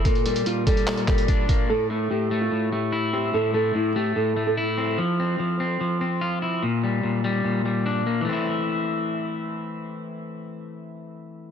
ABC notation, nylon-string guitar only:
X:1
M:4/4
L:1/16
Q:1/4=146
K:Aphr
V:1 name="Nylon-string guitar"
B2 B2 F2 A4 B6 | A2 E2 G3 F3 G4 G2 | A2 A2 E2 G2 A3 A E2 z2 | z16 |
z16 | z16 | z16 |]